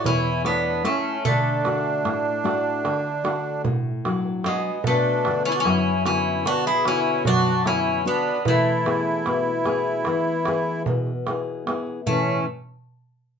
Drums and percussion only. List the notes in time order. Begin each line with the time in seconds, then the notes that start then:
0.05 darbuka dum
0.45 darbuka tek
0.65 darbuka tek
0.85 darbuka tek
1.25 darbuka dum
1.65 darbuka tek
2.05 darbuka tek
2.45 darbuka tek
2.85 darbuka tek
3.25 darbuka tek
3.65 darbuka dum
4.05 darbuka tek
4.25 darbuka tek
4.44 darbuka tek
4.84 darbuka dum
5.25 darbuka tek
5.65 darbuka tek
6.06 darbuka tek
6.46 darbuka tek
6.85 darbuka tek
7.25 darbuka dum
7.66 darbuka tek
7.85 darbuka tek
8.45 darbuka dum
8.66 darbuka tek
8.86 darbuka tek
9.26 darbuka tek
9.46 darbuka tek
9.65 darbuka tek
9.86 darbuka tek
10.05 darbuka tek
10.45 darbuka tek
10.86 darbuka dum
11.07 darbuka tek
11.27 darbuka tek
11.67 darbuka tek
11.87 darbuka tek
12.07 darbuka dum